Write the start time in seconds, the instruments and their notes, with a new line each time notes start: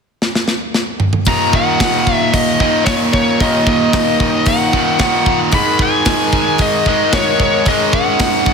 0.22 snare
0.35 snare
0.48 snare
0.74 snare
1.00 mid tom
1.13 mid tom
1.25 distorted electric guitar D#2, string section D#3 A#3 D#4, lead electric guitar A#5, kick, open hi-hat
1.30 distorted electric guitar A#2 D#3
1.53 lead electric guitar F#5, kick
1.80 kick, snare, open hi-hat
2.07 kick
2.14 lead electric guitar E5
2.34 lead electric guitar D#5, kick, open hi-hat
2.60 distorted electric guitar D#2 A#2 D#3, lead electric guitar D#5, kick
2.85 distorted electric guitar D#2 A#2, lead electric guitar C#5, kick, snare, open hi-hat
2.89 distorted electric guitar D#3
3.13 lead electric guitar C#5, kick
3.40 distorted electric guitar D#2 A#2 D#3, lead electric guitar D#5, kick, open hi-hat
3.67 lead electric guitar D#5, kick
3.93 kick, snare, open hi-hat
4.20 kick
4.46 lead electric guitar F#5, kick, open hi-hat
4.73 distorted electric guitar D#2 A#2 D#3, kick
4.99 distorted electric guitar D#2 A#2 D#3, lead electric guitar F#5, kick, snare, open hi-hat
5.26 kick
5.52 distorted electric guitar G#2 D#3, string section G#3 D#4 A#4, lead electric guitar B5, kick, open hi-hat
5.56 distorted electric guitar G#3
5.79 lead electric guitar G#5, kick
6.05 kick, snare, open hi-hat
6.33 kick
6.58 lead electric guitar D#5, kick, open hi-hat
6.86 distorted electric guitar D#3 G#3, lead electric guitar D#5, kick
6.91 distorted electric guitar G#2
7.13 distorted electric guitar G#2, lead electric guitar C#5, kick, snare, open hi-hat
7.17 distorted electric guitar D#3 G#3
7.40 lead electric guitar C#5, kick
7.65 distorted electric guitar G#2, string section C#4, lead electric guitar D#5, kick, open hi-hat
7.69 distorted electric guitar D#3 G#3
7.93 lead electric guitar F#5, kick
8.19 kick, snare, open hi-hat
8.46 kick